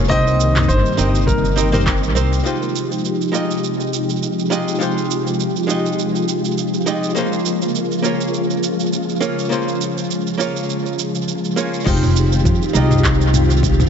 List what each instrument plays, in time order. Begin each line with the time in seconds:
Already playing: string machine A#3
0.08 upright bass C2, string machine C3 D#3 G3 D#4, hollow-body jazz guitar C4 D#4 G4 C5, grand piano D#5, kick, shaker
0.27 shaker
0.40 shaker
0.56 clap, mid tom, shaker
0.68 upright bass G1, grand piano C5, kick, shaker
0.86 shaker
0.97 upright bass G1, hollow-body jazz guitar C4 D#4 G4 A#4 D#5, shaker
1.15 shaker
1.27 grand piano A#4, kick, shaker
1.45 shaker
1.56 hollow-body jazz guitar C4 D#4 G4 A#4 D#5, shaker
1.72 hollow-body jazz guitar C4 D#4 G4 A#4 C5, mid tom, shaker
1.86 kick, clap, shaker
2.04 shaker
2.15 upright bass C2, hollow-body jazz guitar C4 D#4 G4 A#4 C5, shaker
2.33 shaker
2.43 string machine C3 F3 G#3 D#4 G4, hollow-body jazz guitar G#3 D#4 F4 G4 C5, shaker
2.63 shaker
2.76 shaker
2.92 shaker
3.05 shaker
3.21 shaker
3.32 hollow-body jazz guitar G#3 D#4 F4 G4 D#5, shaker
3.51 shaker
3.64 shaker
3.80 shaker
3.94 shaker
4.10 shaker
4.23 shaker
4.39 shaker
4.50 hollow-body jazz guitar G#3 D#4 F4 G4 D#5, shaker
4.68 shaker
4.79 hollow-body jazz guitar G#3 D#4 F4 G4 C5, string machine F4, shaker
4.98 shaker
5.11 shaker
5.27 shaker
5.40 shaker
5.56 shaker
5.67 hollow-body jazz guitar G#3 D#4 F4 G4 D#5, shaker
5.86 shaker
5.99 shaker
6.16 shaker
6.29 shaker
6.45 shaker
6.58 shaker
6.74 shaker
6.86 hollow-body jazz guitar G#3 D#4 F4 G4 D#5, shaker
7.04 shaker
7.15 string machine C#3 A#3, hollow-body jazz guitar A#3 C#4 F4 G#4 C5, shaker
7.33 shaker
7.46 shaker
7.62 shaker
7.75 shaker
7.92 shaker
8.02 hollow-body jazz guitar A#3 C#4 F4 G#4 C#5, shaker
8.21 shaker
8.34 shaker
8.50 shaker
8.63 shaker
8.80 shaker
8.93 shaker
9.09 shaker
9.21 hollow-body jazz guitar A#3 C#4 F4 G#4 C#5, shaker
9.39 shaker
9.49 hollow-body jazz guitar A#3 C#4 F4 G#4 C5, shaker
9.68 shaker
9.81 shaker
9.98 shaker
10.11 shaker
10.27 shaker
10.37 hollow-body jazz guitar A#3 C#4 F4 G#4 C#5, shaker
10.57 shaker
10.70 shaker
10.86 shaker
10.99 shaker
11.15 shaker
11.28 shaker
11.45 shaker
11.56 hollow-body jazz guitar A#3 C#4 F4 G#4 C#5, shaker
11.74 shaker
11.84 upright bass F1, string machine D#3 G#3 C4 F4 G4, hollow-body jazz guitar G#3 D#4 F4 G4 C5, kick, crash, shaker
12.03 mid tom, shaker
12.16 shaker
12.32 shaker
12.45 upright bass F2, kick, mid tom, shaker
12.62 shaker
12.73 upright bass C2, hollow-body jazz guitar G#3 D#4 F4 G4 D#5, shaker
12.91 mid tom, shaker
13.04 kick, clap, shaker
13.21 shaker
13.34 mid tom, shaker
13.50 shaker
13.63 kick, shaker
13.80 mid tom, shaker